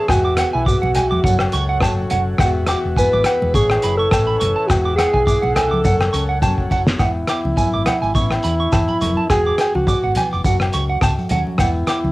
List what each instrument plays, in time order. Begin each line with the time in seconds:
Already playing: nylon-string guitar E4
0.08 fingered electric bass E1, nylon-string guitar E2, alto saxophone F#4, transistor combo organ G#4 E5 F#5, clean electric guitar G#5, kick, cross-stick, low agogo, shekere
0.25 clean electric guitar D6
0.37 nylon-string guitar B3, clean electric guitar F#5, cross-stick, closed hi-hat, low agogo, shekere
0.53 fingered electric bass B1, alto saxophone E4, clean electric guitar G#5
0.66 alto saxophone F#4, clean electric guitar D6, kick, shekere
0.82 fingered electric bass B1, clean electric guitar F#5, high conga
0.95 nylon-string guitar E2, clean electric guitar G#5, closed hi-hat, low conga, low agogo, shekere
1.11 fingered electric bass E1, clean electric guitar D6, high conga
1.23 fingered electric bass F#1, nylon-string guitar F#2, transistor combo organ A4 C#5, clean electric guitar F#5, kick, shekere
1.39 cross-stick, low agogo
1.52 fingered electric bass C#2, clean electric guitar C#6, closed hi-hat, shekere
1.69 clean electric guitar F#5
1.81 fingered electric bass F#1, nylon-string guitar F#3 C#4, clean electric guitar A5, kick, cross-stick, low agogo, shekere
2.10 fingered electric bass F#1, clean electric guitar F#5, closed hi-hat, low conga
2.38 fingered electric bass E1, nylon-string guitar E2 E3, transistor combo organ G#4 E5, clean electric guitar F#5, kick, cross-stick, low agogo, shekere
2.42 nylon-string guitar G#3 B3 F#4
2.67 clean electric guitar D6, cross-stick, closed hi-hat, low agogo, shekere
2.71 nylon-string guitar F#4
2.85 fingered electric bass E1
2.97 nylon-string guitar B3, alto saxophone B4, clean electric guitar G#5, kick, shekere
3.13 fingered electric bass G#1, clean electric guitar D6, high conga
3.24 clean electric guitar F#5, cross-stick, closed hi-hat, low agogo, shekere
3.42 fingered electric bass E1, high conga
3.54 fingered electric bass A1, nylon-string guitar A2, alto saxophone G#4, transistor combo organ B4 C#5 E5, clean electric guitar C#6, kick, shekere
3.70 cross-stick, low agogo
3.82 fingered electric bass F#1, nylon-string guitar E4, clean electric guitar B5, closed hi-hat, shekere
3.97 alto saxophone A4, clean electric guitar C#6
4.11 fingered electric bass A1, nylon-string guitar E3 C#4, clean electric guitar A5, kick, cross-stick, low agogo, shekere
4.27 clean electric guitar B5
4.40 fingered electric bass F#1, clean electric guitar C#6, closed hi-hat, low conga
4.56 clean electric guitar A5
4.67 fingered electric bass E1, nylon-string guitar E2, alto saxophone F#4, transistor combo organ G#4 E5 F#5, muted clean electric guitar stroke, kick, cross-stick, low agogo, shekere
4.85 clean electric guitar D6
4.96 nylon-string guitar E4, alto saxophone G#4, clean electric guitar F#5, cross-stick, closed hi-hat, low agogo, shekere
5.13 fingered electric bass B1, clean electric guitar G#5, kick
5.27 nylon-string guitar G#3 E4, clean electric guitar D6, kick, shekere
5.42 fingered electric bass B1, clean electric guitar F#5, high conga
5.55 alto saxophone A4, clean electric guitar G#5, cross-stick, closed hi-hat, low conga, low agogo, shekere
5.71 fingered electric bass C#2, clean electric guitar D6, high conga
5.84 fingered electric bass F#1, nylon-string guitar F#2, transistor combo organ A4 C#5, clean electric guitar F#5, kick, shekere
6.01 cross-stick, low agogo
6.13 fingered electric bass C#2, nylon-string guitar C#4, clean electric guitar C#6, closed hi-hat, shekere
6.29 clean electric guitar F#5
6.42 fingered electric bass F#1, nylon-string guitar F#3 C#4, clean electric guitar A5, kick, low conga, low agogo, shekere
6.58 kick
6.71 fingered electric bass F#1, clean electric guitar F#5, kick, low conga, shekere
6.87 snare
6.99 fingered electric bass E1, nylon-string guitar E2 B3, alto saxophone E4, clean electric guitar F#5, kick, cross-stick, low agogo, shekere
7.27 clean electric guitar D6, cross-stick, closed hi-hat, low agogo, shekere
7.45 fingered electric bass C#2, high conga
7.57 nylon-string guitar F#2, clean electric guitar G#5, kick, shekere
7.74 fingered electric bass G#1, clean electric guitar D6
7.86 nylon-string guitar G#2, clean electric guitar F#5, cross-stick, closed hi-hat, high conga, low conga, low agogo, shekere
8.02 fingered electric bass G#1, clean electric guitar G#5, shekere
8.14 fingered electric bass A1, nylon-string guitar A2 E3 B3 C#4, alto saxophone E4, clean electric guitar C#6, kick, shekere
8.31 cross-stick, low agogo, shekere
8.43 fingered electric bass E2, clean electric guitar B5, closed hi-hat, shekere
8.60 clean electric guitar C#6
8.72 fingered electric bass E2, nylon-string guitar G#2, clean electric guitar A5, kick, cross-stick, low agogo, shekere
8.88 clean electric guitar B5, high conga, shekere
9.01 fingered electric bass F1, nylon-string guitar F#2, clean electric guitar C#6, closed hi-hat, high conga, low conga, shekere
9.17 clean electric guitar A5, high conga
9.30 fingered electric bass E1, nylon-string guitar E2 F#4, alto saxophone G#4, clean electric guitar G#5, kick, cross-stick, low agogo, shekere
9.47 clean electric guitar D6
9.58 clean electric guitar G#5, cross-stick, closed hi-hat, low agogo, shekere
9.75 fingered electric bass C#2, alto saxophone F#4, muted clean electric guitar stroke, high conga
9.87 nylon-string guitar G#3, clean electric guitar D6, kick, shekere
10.04 fingered electric bass G#1, clean electric guitar F#5
10.15 nylon-string guitar E3 B3, clean electric guitar G#5, closed hi-hat, high conga, low conga, low agogo, shekere
10.33 fingered electric bass F1, clean electric guitar D6, shekere
10.44 fingered electric bass F#1, nylon-string guitar F#2 F#4, clean electric guitar F#5, kick, shekere
10.60 cross-stick, low agogo, shekere
10.73 fingered electric bass C#2, clean electric guitar C#6, closed hi-hat, shekere
10.90 clean electric guitar F#5
11.01 fingered electric bass C#2, nylon-string guitar A3, clean electric guitar A5, kick, cross-stick, low agogo, shekere
11.19 high conga, shekere
11.29 fingered electric bass D#2, nylon-string guitar F#3 C#4, clean electric guitar F#5, closed hi-hat, high conga, low conga, shekere
11.47 high conga
11.58 fingered electric bass E1, nylon-string guitar E2 B3, alto saxophone E4, clean electric guitar F#5, kick, cross-stick, low agogo, shekere
11.87 clean electric guitar D6, cross-stick, closed hi-hat, low agogo, shekere
12.04 fingered electric bass C#2, high conga